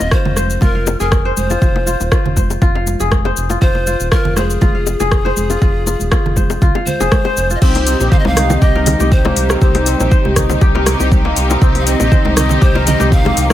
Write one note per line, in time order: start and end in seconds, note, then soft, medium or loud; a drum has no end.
0.00 0.09 D#1 medium
0.00 0.55 A#3 loud
0.00 1.30 C4 medium
0.00 0.63 D#4 medium
0.00 0.12 F4 medium
0.00 0.67 G4 medium
0.00 0.14 D#5 loud
0.00 shaker soft
0.11 0.61 F4 medium
0.11 0.62 C5 loud
0.11 kick loud
0.11 cross-stick loud
0.11 shaker soft
0.25 0.58 F1 medium
0.25 low bongo medium
0.25 muted conga soft
0.25 low conga loud
0.37 1.25 C5 medium
0.37 cross-stick medium
0.37 high conga medium
0.37 shaker medium
0.50 shaker soft
0.61 0.95 F1 loud
0.61 1.50 F4 loud
0.61 0.98 A#4 loud
0.61 kick loud
0.61 low bongo medium
0.61 muted conga soft
0.61 high conga loud
0.61 low conga medium
0.61 shaker soft
0.75 1.75 F5 medium
0.87 high bongo loud
0.87 low bongo medium
0.87 shaker medium
1.00 1.33 F1 loud
1.00 2.36 G#4 medium
1.00 1.35 A#4 medium
1.00 muted conga soft
1.00 shaker soft
1.12 kick loud
1.12 cross-stick medium
1.12 low bongo medium
1.12 shaker soft
1.25 2.36 C5 loud
1.37 1.57 F1 medium
1.37 2.33 C5 medium
1.37 high conga medium
1.37 shaker medium
1.50 1.61 F4 medium
1.50 high bongo medium
1.50 low bongo medium
1.50 muted conga soft
1.50 shaker medium
1.62 1.95 F1 loud
1.62 1.86 F4 medium
1.62 kick loud
1.62 shaker soft
1.76 low bongo medium
1.86 2.11 F4 medium
1.86 muted conga medium
1.86 shaker medium
2.00 2.09 D#1 medium
2.00 low bongo medium
2.00 shaker soft
2.11 2.61 F4 medium
2.11 kick loud
2.11 cross-stick loud
2.11 shaker soft
2.25 2.58 F1 medium
2.25 muted conga soft
2.25 low conga loud
2.36 3.25 C5 medium
2.36 kick medium
2.36 low bongo medium
2.36 high conga medium
2.36 shaker medium
2.50 high bongo medium
2.50 shaker soft
2.62 2.95 F1 medium
2.62 3.50 F4 loud
2.62 kick loud
2.62 low bongo medium
2.62 muted conga medium
2.62 shaker soft
2.75 3.75 F5 medium
2.75 high bongo medium
2.87 low bongo medium
2.87 high conga medium
2.87 shaker medium
3.00 3.33 F1 loud
3.00 4.37 G#4 loud
3.00 muted conga soft
3.00 shaker medium
3.11 kick loud
3.11 cross-stick loud
3.11 high conga loud
3.11 shaker soft
3.25 4.36 C5 loud
3.25 high bongo loud
3.25 low bongo medium
3.37 3.57 F1 medium
3.37 shaker medium
3.49 3.61 F4 medium
3.49 low bongo medium
3.49 muted conga soft
3.49 shaker medium
3.62 3.95 F1 loud
3.62 3.86 F4 medium
3.62 4.08 C5 loud
3.62 kick loud
3.62 shaker soft
3.75 low bongo medium
3.87 4.11 F4 medium
3.87 muted conga medium
3.87 shaker medium
4.00 4.09 D#1 medium
4.00 shaker medium
4.11 4.61 F4 medium
4.11 4.38 A#4 loud
4.11 kick loud
4.11 cross-stick loud
4.11 low bongo medium
4.11 shaker soft
4.25 4.58 F1 medium
4.25 muted conga soft
4.25 low conga loud
4.37 6.62 G#4 loud
4.37 5.24 C5 medium
4.37 cross-stick medium
4.37 low bongo medium
4.37 high conga medium
4.37 shaker medium
4.50 shaker soft
4.61 4.95 F1 loud
4.61 5.50 F4 loud
4.61 kick loud
4.61 low bongo medium
4.61 muted conga soft
4.61 high conga medium
4.61 low conga medium
4.61 shaker soft
4.75 5.75 F5 medium
4.87 high bongo medium
4.87 shaker medium
5.00 5.33 F1 loud
5.00 6.36 G#4 loud
5.00 low bongo medium
5.00 muted conga soft
5.00 shaker medium
5.12 kick loud
5.12 cross-stick loud
5.12 shaker soft
5.25 6.36 C5 loud
5.25 low bongo medium
5.37 5.57 F1 medium
5.37 high conga medium
5.37 shaker medium
5.50 5.61 F4 medium
5.50 high bongo medium
5.50 low bongo medium
5.50 muted conga soft
5.50 shaker medium
5.62 5.95 F1 loud
5.62 5.86 F4 medium
5.62 kick loud
5.62 shaker soft
5.86 6.12 F4 medium
5.86 low bongo medium
5.86 muted conga medium
5.86 shaker medium
5.99 6.09 D#1 medium
5.99 high conga medium
5.99 shaker soft
6.12 6.62 F4 medium
6.12 kick loud
6.12 cross-stick loud
6.12 low bongo medium
6.12 shaker soft
6.26 6.58 F1 medium
6.26 muted conga soft
6.26 low conga loud
6.36 7.25 C5 medium
6.36 kick medium
6.36 low bongo medium
6.36 high conga medium
6.36 shaker medium
6.50 high bongo loud
6.50 shaker medium
6.62 6.72 C2 loud
6.62 7.50 F4 loud
6.62 kick loud
6.62 muted conga medium
6.62 low conga medium
6.62 shaker soft
6.75 7.75 F5 medium
6.75 high bongo loud
6.75 low bongo medium
6.75 high conga medium
6.86 7.51 C5 loud
6.86 high conga medium
6.86 low conga medium
6.86 shaker medium
7.00 7.09 F1 loud
7.00 8.37 G#4 loud
7.00 low bongo medium
7.00 muted conga soft
7.00 shaker medium
7.12 kick loud
7.12 cross-stick loud
7.12 high conga loud
7.12 shaker soft
7.25 8.11 C5 loud
7.25 high bongo loud
7.25 low bongo medium
7.37 7.56 F1 medium
7.37 shaker medium
7.50 9.02 F4 medium
7.50 muted conga medium
7.50 shaker medium
7.55 7.63 D#5 medium
7.61 7.95 C2 loud
7.61 13.53 C3 medium
7.61 13.53 D#3 medium
7.61 11.58 G3 medium
7.61 7.97 C4 loud
7.61 7.86 C4 loud
7.61 7.97 D#4 medium
7.61 13.53 D#4 medium
7.61 7.97 G4 loud
7.61 8.11 C5 loud
7.61 kick loud
7.61 crash loud
7.61 shaker soft
7.75 open hi-hat medium
7.75 low bongo medium
7.75 muted conga medium
7.87 9.61 C4 medium
7.87 open hi-hat loud
7.87 shaker medium
8.00 8.09 A#1 medium
8.00 9.59 C4 medium
8.00 9.59 D#4 medium
8.00 9.59 G4 loud
8.00 low bongo medium
8.00 muted conga soft
8.00 shaker medium
8.11 9.31 C5 medium
8.11 8.21 F5 loud
8.11 kick loud
8.11 low conga loud
8.11 shaker soft
8.19 8.28 D#5 medium
8.25 8.58 C2 loud
8.25 8.63 F5 loud
8.25 low bongo loud
8.25 high conga loud
8.35 9.99 D#4 medium
8.35 cross-stick medium
8.35 open hi-hat medium
8.35 muted conga medium
8.35 high conga medium
8.35 low conga medium
8.35 shaker medium
8.49 low bongo loud
8.49 low conga medium
8.49 shaker medium
8.61 8.95 C2 loud
8.61 9.00 G4 loud
8.61 9.13 D#5 loud
8.61 kick loud
8.61 muted conga soft
8.61 shaker soft
8.75 9.50 A#4 loud
8.75 low bongo medium
8.86 open hi-hat medium
8.86 high bongo medium
8.86 muted conga medium
8.86 low conga loud
8.86 shaker medium
9.00 9.32 C2 loud
9.00 10.41 G4 medium
9.00 low bongo medium
9.00 high conga medium
9.00 shaker medium
9.12 9.61 C5 loud
9.12 kick loud
9.12 muted conga soft
9.12 shaker soft
9.25 11.18 A#3 medium
9.25 high bongo loud
9.25 low bongo loud
9.25 high conga loud
9.36 9.56 C2 medium
9.36 open hi-hat medium
9.36 shaker medium
9.49 10.74 A#4 medium
9.49 cross-stick medium
9.49 high bongo medium
9.49 low bongo medium
9.49 muted conga medium
9.49 shaker medium
9.61 9.95 C2 loud
9.61 9.86 C4 loud
9.61 9.97 C4 medium
9.61 9.97 D#4 medium
9.61 9.97 G4 loud
9.61 10.33 C5 medium
9.61 kick loud
9.61 high conga medium
9.61 shaker soft
9.75 open hi-hat medium
9.75 high bongo medium
9.75 low bongo loud
9.75 muted conga medium
9.86 11.61 C4 medium
9.86 open hi-hat medium
9.86 shaker medium
10.00 10.09 A#1 medium
10.00 11.59 C4 medium
10.00 11.59 D#4 medium
10.00 11.59 G4 loud
10.00 low bongo medium
10.00 muted conga soft
10.00 shaker medium
10.11 11.30 C5 loud
10.11 kick loud
10.11 shaker soft
10.25 10.58 C2 medium
10.25 low bongo medium
10.25 high conga loud
10.36 11.99 D#4 medium
10.36 kick medium
10.36 cross-stick medium
10.36 open hi-hat loud
10.36 muted conga medium
10.36 high conga medium
10.36 low conga medium
10.36 shaker loud
10.50 low bongo loud
10.50 low conga medium
10.50 shaker medium
10.61 10.95 C2 loud
10.61 10.99 G4 loud
10.61 kick loud
10.61 high bongo medium
10.61 muted conga soft
10.61 shaker soft
10.75 11.49 A#4 loud
10.75 low bongo loud
10.86 cross-stick medium
10.86 open hi-hat medium
10.86 high bongo medium
10.86 muted conga medium
10.86 high conga medium
10.86 shaker medium
11.00 11.33 C2 loud
11.00 12.41 G4 medium
11.00 low bongo medium
11.00 shaker medium
11.12 kick loud
11.12 muted conga soft
11.12 high conga loud
11.12 shaker soft
11.25 13.18 A#3 medium
11.25 low bongo medium
11.36 11.56 C2 medium
11.36 open hi-hat medium
11.36 shaker loud
11.50 12.74 A#4 medium
11.50 low bongo loud
11.50 muted conga soft
11.50 shaker medium
11.61 11.95 C2 medium
11.61 13.53 F3 medium
11.61 11.86 C4 loud
11.61 11.97 C4 medium
11.61 11.97 D#4 medium
11.61 11.97 G4 loud
11.61 kick loud
11.61 shaker soft
11.75 open hi-hat soft
11.75 low bongo medium
11.75 muted conga medium
11.80 11.88 F5 medium
11.86 13.53 C4 medium
11.86 12.36 D#5 loud
11.86 open hi-hat medium
11.86 shaker loud
12.00 12.09 A#1 medium
12.00 13.53 C4 medium
12.00 13.53 D#4 medium
12.00 13.53 G4 loud
12.00 low bongo loud
12.00 muted conga soft
12.00 shaker medium
12.11 13.30 C5 loud
12.11 kick loud
12.11 low conga medium
12.11 shaker soft
12.25 12.58 C2 medium
12.25 low bongo loud
12.25 high conga loud
12.36 13.53 D#4 medium
12.36 12.64 D#5 loud
12.36 cross-stick medium
12.36 open hi-hat medium
12.36 muted conga soft
12.36 high conga loud
12.36 low conga medium
12.36 shaker loud
12.49 low bongo medium
12.49 low conga medium
12.49 shaker medium
12.61 12.95 C2 loud
12.61 12.99 G4 loud
12.61 12.88 C5 loud
12.61 kick loud
12.61 muted conga soft
12.61 shaker soft
12.75 13.50 A#4 loud
12.75 low bongo loud
12.87 13.14 D#5 loud
12.87 open hi-hat medium
12.87 high bongo medium
12.87 muted conga medium
12.87 low conga loud
12.87 shaker loud
13.00 13.33 C2 loud
13.00 13.53 G4 medium
13.00 low bongo medium
13.00 high conga loud
13.00 shaker medium
13.12 13.53 F5 loud
13.12 kick loud
13.12 muted conga soft
13.12 shaker soft
13.25 13.53 A#3 medium
13.25 high bongo loud
13.25 low bongo medium
13.25 high conga loud
13.37 13.53 C2 medium
13.37 open hi-hat medium
13.37 shaker medium
13.50 13.53 A#4 medium
13.50 cross-stick medium
13.50 low bongo loud